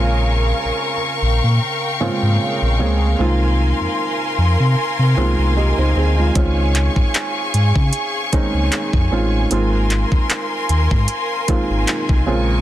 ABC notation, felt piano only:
X:1
M:4/4
L:1/16
Q:"Swing 16ths" 1/4=76
K:Ab
V:1 name="Felt piano"
z16 | z12 [Ge] [Ec] [CA] [A,F]- | [A,F] z12 z3 | z16 |]
V:2 name="Felt piano"
[D,A,B,CF]4 z6 [D,A,B,CF]4 [D,A,B,CA]2 | [E,A,B,CF]6 z4 [E,A,B,CF]4 z2 | [E,A,CDF]6 z4 [E,A,CDE]4 [E,A,CDF]2 | [E,A,B,CF]6 z4 [E,A,B,CF]4 [D,A,B,CF]2 |]